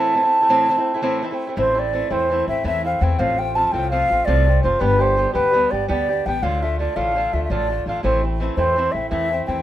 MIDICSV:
0, 0, Header, 1, 4, 480
1, 0, Start_track
1, 0, Key_signature, 0, "minor"
1, 0, Tempo, 359066
1, 2101, Time_signature, 9, 3, 24, 8
1, 12861, End_track
2, 0, Start_track
2, 0, Title_t, "Flute"
2, 0, Program_c, 0, 73
2, 0, Note_on_c, 0, 81, 99
2, 1643, Note_off_c, 0, 81, 0
2, 2122, Note_on_c, 0, 72, 91
2, 2396, Note_on_c, 0, 74, 100
2, 2416, Note_off_c, 0, 72, 0
2, 2832, Note_on_c, 0, 72, 93
2, 2852, Note_off_c, 0, 74, 0
2, 3314, Note_off_c, 0, 72, 0
2, 3322, Note_on_c, 0, 76, 91
2, 3531, Note_off_c, 0, 76, 0
2, 3566, Note_on_c, 0, 76, 94
2, 3800, Note_off_c, 0, 76, 0
2, 3812, Note_on_c, 0, 77, 82
2, 4047, Note_on_c, 0, 79, 88
2, 4067, Note_off_c, 0, 77, 0
2, 4267, Note_on_c, 0, 77, 108
2, 4287, Note_off_c, 0, 79, 0
2, 4528, Note_on_c, 0, 79, 109
2, 4548, Note_off_c, 0, 77, 0
2, 4752, Note_on_c, 0, 81, 99
2, 4772, Note_off_c, 0, 79, 0
2, 4906, Note_off_c, 0, 81, 0
2, 4906, Note_on_c, 0, 81, 73
2, 4972, Note_on_c, 0, 79, 95
2, 4992, Note_off_c, 0, 81, 0
2, 5215, Note_off_c, 0, 79, 0
2, 5223, Note_on_c, 0, 77, 109
2, 5683, Note_on_c, 0, 74, 100
2, 5703, Note_off_c, 0, 77, 0
2, 6186, Note_off_c, 0, 74, 0
2, 6196, Note_on_c, 0, 72, 82
2, 6422, Note_on_c, 0, 71, 101
2, 6442, Note_off_c, 0, 72, 0
2, 6700, Note_on_c, 0, 72, 94
2, 6720, Note_off_c, 0, 71, 0
2, 7130, Note_off_c, 0, 72, 0
2, 7138, Note_on_c, 0, 71, 96
2, 7631, Note_on_c, 0, 74, 92
2, 7651, Note_off_c, 0, 71, 0
2, 7862, Note_off_c, 0, 74, 0
2, 7885, Note_on_c, 0, 74, 100
2, 8368, Note_on_c, 0, 79, 92
2, 8388, Note_off_c, 0, 74, 0
2, 8593, Note_on_c, 0, 77, 88
2, 8613, Note_off_c, 0, 79, 0
2, 8859, Note_on_c, 0, 76, 82
2, 8879, Note_off_c, 0, 77, 0
2, 9074, Note_off_c, 0, 76, 0
2, 9082, Note_on_c, 0, 74, 77
2, 9308, Note_on_c, 0, 77, 91
2, 9328, Note_off_c, 0, 74, 0
2, 9803, Note_on_c, 0, 76, 75
2, 9823, Note_off_c, 0, 77, 0
2, 9938, Note_off_c, 0, 76, 0
2, 9948, Note_on_c, 0, 76, 60
2, 10033, Note_on_c, 0, 74, 93
2, 10053, Note_off_c, 0, 76, 0
2, 10520, Note_off_c, 0, 74, 0
2, 10536, Note_on_c, 0, 77, 69
2, 10734, Note_off_c, 0, 77, 0
2, 10742, Note_on_c, 0, 72, 82
2, 10987, Note_off_c, 0, 72, 0
2, 11445, Note_on_c, 0, 72, 90
2, 11922, Note_on_c, 0, 76, 85
2, 11942, Note_off_c, 0, 72, 0
2, 12154, Note_off_c, 0, 76, 0
2, 12162, Note_on_c, 0, 76, 95
2, 12628, Note_off_c, 0, 76, 0
2, 12653, Note_on_c, 0, 79, 89
2, 12861, Note_off_c, 0, 79, 0
2, 12861, End_track
3, 0, Start_track
3, 0, Title_t, "Steel-string acoustic guitar"
3, 0, Program_c, 1, 25
3, 0, Note_on_c, 1, 45, 64
3, 0, Note_on_c, 1, 52, 72
3, 0, Note_on_c, 1, 57, 82
3, 0, Note_on_c, 1, 60, 65
3, 0, Note_on_c, 1, 64, 81
3, 183, Note_off_c, 1, 52, 0
3, 194, Note_off_c, 1, 60, 0
3, 198, Note_off_c, 1, 45, 0
3, 199, Note_on_c, 1, 52, 58
3, 209, Note_off_c, 1, 57, 0
3, 209, Note_off_c, 1, 64, 0
3, 210, Note_on_c, 1, 60, 49
3, 223, Note_on_c, 1, 57, 68
3, 232, Note_on_c, 1, 64, 62
3, 286, Note_off_c, 1, 64, 0
3, 302, Note_on_c, 1, 64, 54
3, 313, Note_off_c, 1, 57, 0
3, 315, Note_off_c, 1, 52, 0
3, 320, Note_off_c, 1, 60, 0
3, 329, Note_on_c, 1, 57, 49
3, 340, Note_on_c, 1, 60, 45
3, 531, Note_off_c, 1, 64, 0
3, 547, Note_on_c, 1, 64, 52
3, 551, Note_off_c, 1, 57, 0
3, 557, Note_off_c, 1, 60, 0
3, 571, Note_on_c, 1, 57, 61
3, 580, Note_on_c, 1, 60, 53
3, 653, Note_off_c, 1, 60, 0
3, 657, Note_on_c, 1, 45, 80
3, 658, Note_off_c, 1, 57, 0
3, 661, Note_off_c, 1, 64, 0
3, 665, Note_on_c, 1, 52, 87
3, 669, Note_on_c, 1, 60, 89
3, 674, Note_on_c, 1, 57, 78
3, 682, Note_on_c, 1, 64, 85
3, 900, Note_off_c, 1, 52, 0
3, 916, Note_on_c, 1, 52, 75
3, 918, Note_off_c, 1, 60, 0
3, 921, Note_off_c, 1, 57, 0
3, 922, Note_off_c, 1, 45, 0
3, 934, Note_off_c, 1, 64, 0
3, 934, Note_on_c, 1, 60, 68
3, 937, Note_on_c, 1, 57, 75
3, 954, Note_on_c, 1, 64, 72
3, 1021, Note_off_c, 1, 64, 0
3, 1034, Note_off_c, 1, 52, 0
3, 1034, Note_off_c, 1, 57, 0
3, 1037, Note_on_c, 1, 64, 57
3, 1043, Note_off_c, 1, 60, 0
3, 1050, Note_on_c, 1, 57, 54
3, 1063, Note_on_c, 1, 60, 48
3, 1243, Note_off_c, 1, 64, 0
3, 1259, Note_on_c, 1, 64, 67
3, 1263, Note_off_c, 1, 57, 0
3, 1276, Note_off_c, 1, 60, 0
3, 1279, Note_on_c, 1, 57, 60
3, 1292, Note_on_c, 1, 60, 45
3, 1356, Note_off_c, 1, 60, 0
3, 1363, Note_on_c, 1, 45, 76
3, 1365, Note_off_c, 1, 57, 0
3, 1368, Note_off_c, 1, 64, 0
3, 1372, Note_on_c, 1, 60, 85
3, 1373, Note_on_c, 1, 52, 76
3, 1381, Note_on_c, 1, 57, 85
3, 1384, Note_on_c, 1, 64, 87
3, 1617, Note_off_c, 1, 52, 0
3, 1623, Note_off_c, 1, 60, 0
3, 1633, Note_on_c, 1, 52, 65
3, 1636, Note_off_c, 1, 45, 0
3, 1636, Note_off_c, 1, 57, 0
3, 1639, Note_on_c, 1, 60, 62
3, 1646, Note_off_c, 1, 64, 0
3, 1652, Note_on_c, 1, 57, 63
3, 1663, Note_on_c, 1, 64, 75
3, 1731, Note_off_c, 1, 64, 0
3, 1747, Note_on_c, 1, 64, 55
3, 1749, Note_off_c, 1, 57, 0
3, 1753, Note_off_c, 1, 52, 0
3, 1756, Note_off_c, 1, 60, 0
3, 1765, Note_on_c, 1, 57, 49
3, 1778, Note_on_c, 1, 60, 48
3, 1951, Note_off_c, 1, 64, 0
3, 1967, Note_on_c, 1, 64, 57
3, 1972, Note_off_c, 1, 57, 0
3, 1986, Note_off_c, 1, 60, 0
3, 1988, Note_on_c, 1, 57, 53
3, 2002, Note_on_c, 1, 60, 54
3, 2078, Note_off_c, 1, 60, 0
3, 2083, Note_on_c, 1, 45, 60
3, 2091, Note_off_c, 1, 57, 0
3, 2091, Note_off_c, 1, 64, 0
3, 2094, Note_on_c, 1, 52, 63
3, 2094, Note_on_c, 1, 60, 63
3, 2107, Note_on_c, 1, 57, 69
3, 2109, Note_on_c, 1, 64, 74
3, 2318, Note_off_c, 1, 64, 0
3, 2332, Note_off_c, 1, 57, 0
3, 2334, Note_on_c, 1, 64, 55
3, 2348, Note_on_c, 1, 57, 44
3, 2356, Note_off_c, 1, 45, 0
3, 2356, Note_off_c, 1, 60, 0
3, 2361, Note_off_c, 1, 52, 0
3, 2372, Note_on_c, 1, 60, 39
3, 2569, Note_off_c, 1, 60, 0
3, 2578, Note_off_c, 1, 64, 0
3, 2578, Note_on_c, 1, 52, 46
3, 2585, Note_off_c, 1, 57, 0
3, 2585, Note_on_c, 1, 60, 58
3, 2602, Note_on_c, 1, 57, 61
3, 2605, Note_on_c, 1, 64, 58
3, 2794, Note_off_c, 1, 64, 0
3, 2798, Note_off_c, 1, 57, 0
3, 2798, Note_off_c, 1, 60, 0
3, 2810, Note_off_c, 1, 52, 0
3, 2810, Note_on_c, 1, 64, 62
3, 2814, Note_on_c, 1, 57, 57
3, 2814, Note_on_c, 1, 60, 56
3, 2826, Note_on_c, 1, 52, 51
3, 2827, Note_on_c, 1, 45, 46
3, 3055, Note_off_c, 1, 52, 0
3, 3071, Note_on_c, 1, 52, 65
3, 3077, Note_off_c, 1, 60, 0
3, 3080, Note_off_c, 1, 64, 0
3, 3082, Note_off_c, 1, 57, 0
3, 3088, Note_off_c, 1, 45, 0
3, 3093, Note_on_c, 1, 60, 65
3, 3102, Note_on_c, 1, 57, 67
3, 3107, Note_on_c, 1, 64, 73
3, 3291, Note_off_c, 1, 64, 0
3, 3307, Note_off_c, 1, 52, 0
3, 3308, Note_on_c, 1, 64, 45
3, 3309, Note_off_c, 1, 57, 0
3, 3318, Note_off_c, 1, 60, 0
3, 3325, Note_on_c, 1, 57, 43
3, 3344, Note_on_c, 1, 60, 40
3, 3526, Note_off_c, 1, 60, 0
3, 3529, Note_on_c, 1, 45, 61
3, 3531, Note_off_c, 1, 57, 0
3, 3531, Note_off_c, 1, 64, 0
3, 3537, Note_on_c, 1, 52, 68
3, 3542, Note_on_c, 1, 60, 70
3, 3547, Note_on_c, 1, 57, 64
3, 3547, Note_on_c, 1, 64, 65
3, 3784, Note_off_c, 1, 64, 0
3, 3798, Note_off_c, 1, 57, 0
3, 3800, Note_off_c, 1, 45, 0
3, 3800, Note_on_c, 1, 64, 46
3, 3804, Note_off_c, 1, 52, 0
3, 3806, Note_off_c, 1, 60, 0
3, 3814, Note_on_c, 1, 57, 43
3, 3830, Note_on_c, 1, 60, 38
3, 4014, Note_on_c, 1, 52, 54
3, 4016, Note_off_c, 1, 60, 0
3, 4024, Note_off_c, 1, 57, 0
3, 4032, Note_off_c, 1, 64, 0
3, 4032, Note_on_c, 1, 60, 60
3, 4040, Note_on_c, 1, 57, 57
3, 4052, Note_on_c, 1, 64, 59
3, 4253, Note_off_c, 1, 52, 0
3, 4253, Note_off_c, 1, 60, 0
3, 4256, Note_on_c, 1, 45, 60
3, 4259, Note_off_c, 1, 57, 0
3, 4264, Note_on_c, 1, 53, 60
3, 4269, Note_off_c, 1, 64, 0
3, 4269, Note_on_c, 1, 60, 69
3, 4275, Note_on_c, 1, 57, 58
3, 4275, Note_on_c, 1, 65, 64
3, 4507, Note_off_c, 1, 65, 0
3, 4523, Note_off_c, 1, 45, 0
3, 4523, Note_on_c, 1, 65, 46
3, 4524, Note_off_c, 1, 57, 0
3, 4527, Note_off_c, 1, 53, 0
3, 4530, Note_off_c, 1, 60, 0
3, 4540, Note_on_c, 1, 57, 47
3, 4551, Note_on_c, 1, 60, 40
3, 4745, Note_off_c, 1, 60, 0
3, 4747, Note_on_c, 1, 53, 53
3, 4753, Note_off_c, 1, 65, 0
3, 4755, Note_off_c, 1, 57, 0
3, 4761, Note_on_c, 1, 60, 59
3, 4771, Note_on_c, 1, 57, 59
3, 4785, Note_on_c, 1, 65, 56
3, 4977, Note_off_c, 1, 65, 0
3, 4980, Note_off_c, 1, 53, 0
3, 4980, Note_off_c, 1, 57, 0
3, 4987, Note_off_c, 1, 60, 0
3, 4993, Note_on_c, 1, 65, 58
3, 4996, Note_on_c, 1, 57, 51
3, 5001, Note_on_c, 1, 60, 56
3, 5012, Note_on_c, 1, 45, 54
3, 5012, Note_on_c, 1, 53, 55
3, 5222, Note_off_c, 1, 53, 0
3, 5231, Note_off_c, 1, 60, 0
3, 5238, Note_on_c, 1, 53, 68
3, 5242, Note_off_c, 1, 57, 0
3, 5247, Note_on_c, 1, 60, 66
3, 5249, Note_off_c, 1, 65, 0
3, 5258, Note_on_c, 1, 57, 69
3, 5262, Note_off_c, 1, 45, 0
3, 5265, Note_on_c, 1, 65, 65
3, 5461, Note_off_c, 1, 65, 0
3, 5471, Note_off_c, 1, 53, 0
3, 5476, Note_off_c, 1, 60, 0
3, 5477, Note_on_c, 1, 65, 53
3, 5481, Note_off_c, 1, 57, 0
3, 5497, Note_on_c, 1, 57, 45
3, 5515, Note_on_c, 1, 60, 41
3, 5704, Note_off_c, 1, 60, 0
3, 5705, Note_off_c, 1, 65, 0
3, 5709, Note_on_c, 1, 45, 69
3, 5711, Note_off_c, 1, 57, 0
3, 5716, Note_on_c, 1, 53, 65
3, 5720, Note_on_c, 1, 60, 76
3, 5727, Note_on_c, 1, 57, 75
3, 5733, Note_on_c, 1, 65, 74
3, 5949, Note_off_c, 1, 65, 0
3, 5965, Note_on_c, 1, 65, 40
3, 5966, Note_off_c, 1, 57, 0
3, 5970, Note_off_c, 1, 45, 0
3, 5974, Note_off_c, 1, 53, 0
3, 5976, Note_off_c, 1, 60, 0
3, 5982, Note_on_c, 1, 57, 44
3, 5997, Note_on_c, 1, 60, 39
3, 6187, Note_on_c, 1, 53, 58
3, 6188, Note_off_c, 1, 60, 0
3, 6193, Note_off_c, 1, 57, 0
3, 6195, Note_off_c, 1, 65, 0
3, 6204, Note_on_c, 1, 60, 57
3, 6209, Note_on_c, 1, 57, 62
3, 6217, Note_on_c, 1, 65, 67
3, 6399, Note_off_c, 1, 53, 0
3, 6404, Note_on_c, 1, 55, 63
3, 6413, Note_off_c, 1, 60, 0
3, 6417, Note_off_c, 1, 57, 0
3, 6418, Note_on_c, 1, 59, 74
3, 6423, Note_on_c, 1, 62, 67
3, 6430, Note_off_c, 1, 65, 0
3, 6435, Note_on_c, 1, 67, 68
3, 6653, Note_off_c, 1, 67, 0
3, 6669, Note_off_c, 1, 62, 0
3, 6669, Note_on_c, 1, 67, 57
3, 6678, Note_off_c, 1, 55, 0
3, 6685, Note_off_c, 1, 59, 0
3, 6685, Note_on_c, 1, 62, 48
3, 6699, Note_on_c, 1, 59, 41
3, 6897, Note_off_c, 1, 59, 0
3, 6901, Note_on_c, 1, 55, 57
3, 6907, Note_off_c, 1, 67, 0
3, 6909, Note_off_c, 1, 62, 0
3, 6914, Note_on_c, 1, 59, 55
3, 6925, Note_on_c, 1, 62, 58
3, 6934, Note_on_c, 1, 67, 56
3, 7113, Note_off_c, 1, 67, 0
3, 7129, Note_on_c, 1, 67, 61
3, 7130, Note_off_c, 1, 62, 0
3, 7137, Note_off_c, 1, 55, 0
3, 7138, Note_off_c, 1, 59, 0
3, 7146, Note_on_c, 1, 62, 62
3, 7152, Note_on_c, 1, 55, 53
3, 7154, Note_on_c, 1, 59, 58
3, 7377, Note_off_c, 1, 55, 0
3, 7390, Note_off_c, 1, 59, 0
3, 7393, Note_on_c, 1, 55, 70
3, 7401, Note_off_c, 1, 67, 0
3, 7406, Note_on_c, 1, 59, 68
3, 7409, Note_off_c, 1, 62, 0
3, 7425, Note_on_c, 1, 62, 62
3, 7427, Note_on_c, 1, 67, 75
3, 7624, Note_off_c, 1, 67, 0
3, 7629, Note_off_c, 1, 55, 0
3, 7635, Note_off_c, 1, 59, 0
3, 7639, Note_off_c, 1, 62, 0
3, 7640, Note_on_c, 1, 67, 44
3, 7655, Note_on_c, 1, 62, 52
3, 7673, Note_on_c, 1, 59, 44
3, 7849, Note_off_c, 1, 59, 0
3, 7863, Note_off_c, 1, 62, 0
3, 7863, Note_on_c, 1, 55, 62
3, 7865, Note_on_c, 1, 59, 72
3, 7866, Note_off_c, 1, 67, 0
3, 7880, Note_on_c, 1, 62, 68
3, 7881, Note_on_c, 1, 67, 81
3, 8122, Note_off_c, 1, 67, 0
3, 8127, Note_off_c, 1, 55, 0
3, 8128, Note_off_c, 1, 59, 0
3, 8136, Note_off_c, 1, 62, 0
3, 8138, Note_on_c, 1, 67, 48
3, 8156, Note_on_c, 1, 62, 47
3, 8175, Note_on_c, 1, 59, 35
3, 8361, Note_off_c, 1, 67, 0
3, 8368, Note_off_c, 1, 59, 0
3, 8369, Note_on_c, 1, 55, 48
3, 8371, Note_off_c, 1, 62, 0
3, 8384, Note_on_c, 1, 59, 54
3, 8392, Note_on_c, 1, 62, 51
3, 8405, Note_on_c, 1, 67, 63
3, 8591, Note_off_c, 1, 55, 0
3, 8591, Note_on_c, 1, 38, 63
3, 8594, Note_off_c, 1, 62, 0
3, 8598, Note_off_c, 1, 59, 0
3, 8598, Note_on_c, 1, 45, 65
3, 8599, Note_on_c, 1, 50, 67
3, 8603, Note_on_c, 1, 57, 67
3, 8604, Note_off_c, 1, 67, 0
3, 8610, Note_on_c, 1, 62, 79
3, 8610, Note_on_c, 1, 65, 79
3, 8837, Note_off_c, 1, 65, 0
3, 8844, Note_off_c, 1, 62, 0
3, 8851, Note_off_c, 1, 38, 0
3, 8853, Note_on_c, 1, 65, 53
3, 8855, Note_off_c, 1, 45, 0
3, 8855, Note_off_c, 1, 50, 0
3, 8857, Note_off_c, 1, 57, 0
3, 8860, Note_on_c, 1, 62, 47
3, 8876, Note_on_c, 1, 57, 43
3, 8888, Note_on_c, 1, 50, 44
3, 9062, Note_off_c, 1, 50, 0
3, 9074, Note_off_c, 1, 57, 0
3, 9078, Note_off_c, 1, 65, 0
3, 9078, Note_on_c, 1, 50, 55
3, 9082, Note_off_c, 1, 62, 0
3, 9090, Note_on_c, 1, 57, 53
3, 9096, Note_on_c, 1, 62, 58
3, 9112, Note_on_c, 1, 65, 50
3, 9287, Note_off_c, 1, 65, 0
3, 9291, Note_off_c, 1, 57, 0
3, 9293, Note_off_c, 1, 62, 0
3, 9300, Note_off_c, 1, 50, 0
3, 9303, Note_on_c, 1, 65, 64
3, 9307, Note_on_c, 1, 57, 57
3, 9309, Note_on_c, 1, 62, 58
3, 9316, Note_on_c, 1, 50, 55
3, 9323, Note_on_c, 1, 45, 56
3, 9327, Note_on_c, 1, 38, 52
3, 9542, Note_off_c, 1, 50, 0
3, 9557, Note_off_c, 1, 57, 0
3, 9558, Note_on_c, 1, 50, 61
3, 9565, Note_off_c, 1, 62, 0
3, 9567, Note_off_c, 1, 65, 0
3, 9573, Note_on_c, 1, 57, 58
3, 9577, Note_off_c, 1, 45, 0
3, 9579, Note_off_c, 1, 38, 0
3, 9581, Note_on_c, 1, 62, 60
3, 9596, Note_on_c, 1, 65, 68
3, 9787, Note_off_c, 1, 65, 0
3, 9791, Note_off_c, 1, 50, 0
3, 9798, Note_off_c, 1, 57, 0
3, 9798, Note_off_c, 1, 62, 0
3, 9803, Note_on_c, 1, 65, 51
3, 9814, Note_on_c, 1, 62, 44
3, 9826, Note_on_c, 1, 57, 42
3, 9836, Note_on_c, 1, 50, 43
3, 10027, Note_off_c, 1, 50, 0
3, 10027, Note_off_c, 1, 65, 0
3, 10030, Note_off_c, 1, 57, 0
3, 10030, Note_off_c, 1, 62, 0
3, 10030, Note_on_c, 1, 38, 58
3, 10036, Note_on_c, 1, 45, 68
3, 10043, Note_on_c, 1, 50, 66
3, 10046, Note_on_c, 1, 57, 67
3, 10046, Note_on_c, 1, 62, 63
3, 10056, Note_on_c, 1, 65, 72
3, 10268, Note_off_c, 1, 65, 0
3, 10284, Note_off_c, 1, 62, 0
3, 10284, Note_on_c, 1, 65, 42
3, 10290, Note_off_c, 1, 38, 0
3, 10293, Note_off_c, 1, 45, 0
3, 10293, Note_off_c, 1, 57, 0
3, 10297, Note_off_c, 1, 50, 0
3, 10300, Note_on_c, 1, 62, 48
3, 10309, Note_on_c, 1, 57, 37
3, 10320, Note_on_c, 1, 50, 39
3, 10501, Note_off_c, 1, 50, 0
3, 10513, Note_off_c, 1, 57, 0
3, 10513, Note_off_c, 1, 65, 0
3, 10517, Note_on_c, 1, 50, 52
3, 10521, Note_off_c, 1, 62, 0
3, 10529, Note_on_c, 1, 57, 56
3, 10543, Note_on_c, 1, 62, 64
3, 10547, Note_on_c, 1, 65, 65
3, 10731, Note_on_c, 1, 45, 64
3, 10732, Note_off_c, 1, 50, 0
3, 10736, Note_off_c, 1, 57, 0
3, 10738, Note_on_c, 1, 52, 66
3, 10745, Note_off_c, 1, 65, 0
3, 10745, Note_on_c, 1, 60, 80
3, 10747, Note_off_c, 1, 62, 0
3, 10751, Note_on_c, 1, 64, 62
3, 10752, Note_on_c, 1, 57, 77
3, 10985, Note_off_c, 1, 64, 0
3, 11000, Note_off_c, 1, 45, 0
3, 11001, Note_off_c, 1, 57, 0
3, 11001, Note_on_c, 1, 64, 50
3, 11004, Note_off_c, 1, 52, 0
3, 11007, Note_off_c, 1, 60, 0
3, 11017, Note_on_c, 1, 57, 47
3, 11028, Note_on_c, 1, 60, 42
3, 11224, Note_off_c, 1, 60, 0
3, 11230, Note_on_c, 1, 52, 58
3, 11232, Note_off_c, 1, 64, 0
3, 11240, Note_off_c, 1, 57, 0
3, 11240, Note_on_c, 1, 60, 64
3, 11254, Note_on_c, 1, 57, 57
3, 11263, Note_on_c, 1, 64, 61
3, 11447, Note_off_c, 1, 64, 0
3, 11455, Note_off_c, 1, 57, 0
3, 11456, Note_off_c, 1, 52, 0
3, 11461, Note_off_c, 1, 60, 0
3, 11463, Note_on_c, 1, 64, 57
3, 11471, Note_on_c, 1, 57, 61
3, 11472, Note_on_c, 1, 52, 57
3, 11477, Note_on_c, 1, 45, 47
3, 11477, Note_on_c, 1, 60, 57
3, 11695, Note_off_c, 1, 52, 0
3, 11711, Note_on_c, 1, 52, 58
3, 11714, Note_off_c, 1, 60, 0
3, 11721, Note_off_c, 1, 57, 0
3, 11726, Note_off_c, 1, 64, 0
3, 11730, Note_on_c, 1, 60, 60
3, 11733, Note_off_c, 1, 45, 0
3, 11738, Note_on_c, 1, 57, 62
3, 11745, Note_on_c, 1, 64, 66
3, 11922, Note_off_c, 1, 64, 0
3, 11937, Note_off_c, 1, 57, 0
3, 11938, Note_on_c, 1, 64, 45
3, 11946, Note_off_c, 1, 52, 0
3, 11950, Note_off_c, 1, 60, 0
3, 11953, Note_on_c, 1, 57, 39
3, 11966, Note_on_c, 1, 60, 40
3, 12165, Note_off_c, 1, 60, 0
3, 12174, Note_off_c, 1, 57, 0
3, 12174, Note_off_c, 1, 64, 0
3, 12174, Note_on_c, 1, 45, 61
3, 12177, Note_on_c, 1, 52, 70
3, 12181, Note_on_c, 1, 60, 68
3, 12190, Note_on_c, 1, 57, 71
3, 12198, Note_on_c, 1, 64, 70
3, 12417, Note_off_c, 1, 64, 0
3, 12433, Note_on_c, 1, 64, 41
3, 12435, Note_off_c, 1, 57, 0
3, 12441, Note_off_c, 1, 45, 0
3, 12442, Note_off_c, 1, 52, 0
3, 12444, Note_off_c, 1, 60, 0
3, 12452, Note_on_c, 1, 57, 38
3, 12464, Note_on_c, 1, 60, 42
3, 12659, Note_off_c, 1, 60, 0
3, 12660, Note_on_c, 1, 52, 55
3, 12667, Note_off_c, 1, 64, 0
3, 12675, Note_on_c, 1, 60, 62
3, 12676, Note_off_c, 1, 57, 0
3, 12689, Note_on_c, 1, 57, 58
3, 12689, Note_on_c, 1, 64, 60
3, 12861, Note_off_c, 1, 52, 0
3, 12861, Note_off_c, 1, 57, 0
3, 12861, Note_off_c, 1, 60, 0
3, 12861, Note_off_c, 1, 64, 0
3, 12861, End_track
4, 0, Start_track
4, 0, Title_t, "Upright bass"
4, 0, Program_c, 2, 32
4, 2101, Note_on_c, 2, 33, 101
4, 2688, Note_off_c, 2, 33, 0
4, 2817, Note_on_c, 2, 40, 80
4, 3220, Note_off_c, 2, 40, 0
4, 3308, Note_on_c, 2, 33, 75
4, 3497, Note_off_c, 2, 33, 0
4, 3535, Note_on_c, 2, 40, 85
4, 3939, Note_off_c, 2, 40, 0
4, 4025, Note_on_c, 2, 40, 93
4, 4215, Note_off_c, 2, 40, 0
4, 4265, Note_on_c, 2, 33, 101
4, 4851, Note_off_c, 2, 33, 0
4, 4985, Note_on_c, 2, 36, 75
4, 5385, Note_off_c, 2, 36, 0
4, 5484, Note_on_c, 2, 33, 62
4, 5667, Note_off_c, 2, 33, 0
4, 5715, Note_on_c, 2, 36, 95
4, 6111, Note_off_c, 2, 36, 0
4, 6201, Note_on_c, 2, 30, 78
4, 6385, Note_off_c, 2, 30, 0
4, 6431, Note_on_c, 2, 31, 92
4, 7015, Note_off_c, 2, 31, 0
4, 7149, Note_on_c, 2, 38, 86
4, 7547, Note_off_c, 2, 38, 0
4, 7653, Note_on_c, 2, 31, 67
4, 7832, Note_off_c, 2, 31, 0
4, 7878, Note_on_c, 2, 38, 91
4, 8273, Note_off_c, 2, 38, 0
4, 8368, Note_on_c, 2, 33, 80
4, 8549, Note_off_c, 2, 33, 0
4, 8592, Note_on_c, 2, 38, 90
4, 9175, Note_off_c, 2, 38, 0
4, 9309, Note_on_c, 2, 33, 82
4, 9707, Note_off_c, 2, 33, 0
4, 9801, Note_on_c, 2, 38, 68
4, 9984, Note_off_c, 2, 38, 0
4, 10025, Note_on_c, 2, 33, 86
4, 10424, Note_off_c, 2, 33, 0
4, 10506, Note_on_c, 2, 33, 74
4, 10695, Note_off_c, 2, 33, 0
4, 10750, Note_on_c, 2, 33, 81
4, 11332, Note_off_c, 2, 33, 0
4, 11456, Note_on_c, 2, 40, 83
4, 11858, Note_off_c, 2, 40, 0
4, 11957, Note_on_c, 2, 33, 68
4, 12141, Note_off_c, 2, 33, 0
4, 12185, Note_on_c, 2, 40, 85
4, 12583, Note_off_c, 2, 40, 0
4, 12676, Note_on_c, 2, 40, 81
4, 12860, Note_off_c, 2, 40, 0
4, 12861, End_track
0, 0, End_of_file